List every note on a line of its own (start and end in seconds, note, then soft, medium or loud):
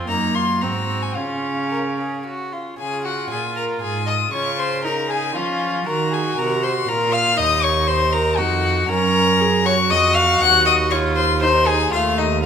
0.08 0.63 F#2 medium
0.08 0.64 A#3 medium
0.08 0.36 D#4 medium
0.08 0.36 A#5 medium
0.34 0.64 F4 medium
0.34 0.63 C6 medium
0.61 1.18 G#2 medium
0.61 1.18 C4 medium
0.61 1.16 F#4 medium
0.61 1.03 A#5 medium
1.02 1.16 G#5 medium
1.15 2.59 C#3 medium
1.15 2.59 C#4 medium
1.15 1.65 F4 soft
1.15 2.25 F5 medium
1.70 1.78 A#4 medium
1.98 2.25 G#4 soft
2.26 2.54 F#4 medium
2.53 2.79 F4 medium
2.79 3.27 C#3 medium
2.79 4.29 F4 medium
2.79 3.07 G#4 medium
2.79 3.03 G#5 medium
3.05 3.30 F#4 medium
3.05 3.30 F#5 medium
3.30 3.81 A#2 medium
3.30 3.39 G#4 medium
3.30 3.56 G#5 medium
3.56 3.81 A#4 medium
3.56 3.64 A#5 medium
3.81 4.32 G#2 medium
3.81 4.06 G#4 medium
3.81 4.09 G#5 medium
4.06 4.14 D#5 medium
4.06 4.33 D#6 medium
4.33 5.37 C#3 medium
4.33 4.86 F4 medium
4.33 4.58 C#5 medium
4.33 4.61 C#6 medium
4.58 4.84 C5 medium
4.58 4.85 C6 medium
4.84 5.37 D#4 medium
4.84 5.09 A#4 medium
4.84 5.12 A#5 medium
5.10 5.35 G#4 medium
5.10 5.37 G#5 medium
5.35 5.86 F3 medium
5.35 5.87 C#4 medium
5.35 5.88 F4 medium
5.35 5.86 F5 medium
5.86 6.37 D#3 medium
5.86 6.90 F#4 medium
5.86 6.10 A#4 medium
5.86 6.15 A#5 medium
6.11 6.36 G#4 medium
6.11 6.40 G#5 medium
6.36 6.87 C3 medium
6.36 6.62 A#4 medium
6.36 6.65 A#5 medium
6.63 6.71 C5 medium
6.63 6.90 C6 medium
6.88 7.40 A#2 medium
6.88 7.38 F4 medium
6.88 7.14 A#4 medium
6.88 7.15 A#5 medium
7.13 7.39 F5 loud
7.13 7.38 F6 loud
7.38 8.40 D#2 medium
7.38 8.86 D#4 medium
7.38 7.65 D#5 medium
7.38 7.64 D#6 loud
7.63 7.89 C#5 medium
7.63 7.89 C#6 loud
7.88 8.12 C5 medium
7.88 8.14 C6 loud
8.13 8.40 A#4 medium
8.13 8.39 A#5 loud
8.37 8.89 F2 medium
8.37 8.91 F#4 medium
8.37 8.88 F#5 medium
8.89 9.92 F#2 medium
8.89 9.42 C#4 medium
8.89 9.65 A#4 medium
8.89 9.67 A#5 loud
9.40 9.67 G#4 medium
9.65 10.93 F#4 medium
9.65 9.73 C#5 loud
9.65 9.91 C#6 loud
9.90 10.41 F2 medium
9.90 10.16 D#5 loud
9.90 10.16 D#6 medium
10.15 10.43 F5 loud
10.15 10.40 F6 loud
10.41 11.90 D#2 medium
10.41 10.67 F#5 medium
10.41 10.66 F#6 loud
10.66 10.93 D#5 medium
10.66 10.74 D#6 loud
10.90 11.44 F4 medium
10.90 11.16 C#5 medium
10.90 10.98 C#6 medium
11.16 11.25 C5 medium
11.16 11.41 C6 medium
11.41 11.92 D#4 medium
11.41 11.68 C5 loud
11.41 11.68 C6 medium
11.66 11.93 G#4 medium
11.66 11.92 G#5 loud
11.92 12.46 D#2 medium
11.92 12.40 A3 medium
11.92 12.18 F4 medium
11.92 12.19 F5 medium
12.18 12.26 D#4 medium
12.18 12.43 D#5 medium